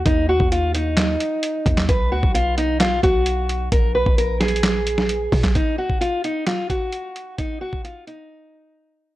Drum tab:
HH |x-----------x-----x-----x-----x-----x-----x-----|x-----------x-----x-----x-----x-----x-----x-----|x-----------x-----x-x-x-x-----x-----x-----o-----|x-----------x-----x-----x-----x-----x-----x-----|
CP |------------------------x--------------------x--|------------------------x-----------------------|------------------------x--------------------x--|------------------------x-----------------------|
SD |------------------------o--------------------o--|------------------------o-----------------------|------------------o-----o--------o-----------o--|------------------------o-----------------------|
BD |o--------o--------------------------------o-----|o--------o--------------------o-----------------|o--------o--------------------------------o--o--|o--------o--------------------o-----------------|

HH |x-----------x-----x-----------------------------|
CP |------------------------------------------------|
SD |------------------------------------------------|
BD |o--------o--------------------------------------|